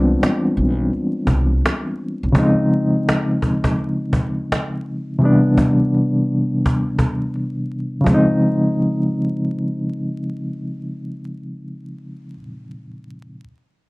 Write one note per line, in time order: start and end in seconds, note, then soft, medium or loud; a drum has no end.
0.00 0.14 C2 medium
0.00 2.31 E3 medium
0.00 2.32 G3 medium
0.00 2.35 G#3 soft
0.00 2.33 B3 medium
0.00 2.30 C4 medium
0.00 2.33 D4 medium
0.00 2.38 F4 medium
0.23 cajon slap loud
0.57 0.89 B1 medium
0.93 cajon slap soft
1.27 1.60 C2 medium
1.27 cajon bass medium
1.66 cajon slap loud
2.23 2.34 B1 medium
2.33 5.16 C#3 medium
2.33 5.16 F3 medium
2.33 5.17 G#3 medium
2.33 cajon bass loud
2.37 5.18 C4 medium
2.37 5.19 D#4 medium
3.09 cajon slap loud
3.42 cajon bass medium
3.64 cajon bass medium
3.79 cajon slap soft
4.13 cajon bass medium
4.52 cajon slap loud
5.19 8.02 C3 medium
5.19 8.02 E3 medium
5.19 8.03 G3 medium
5.19 cajon slap soft
5.24 8.04 B3 medium
5.24 8.05 D4 medium
5.58 cajon bass medium
5.94 cajon slap soft
6.66 cajon bass medium
6.99 cajon bass medium
7.36 cajon slap soft
8.01 12.35 C#3 medium
8.01 12.37 F3 medium
8.06 12.39 G#3 medium
8.06 cajon bass medium
8.11 12.41 C4 medium
8.11 12.42 D#4 medium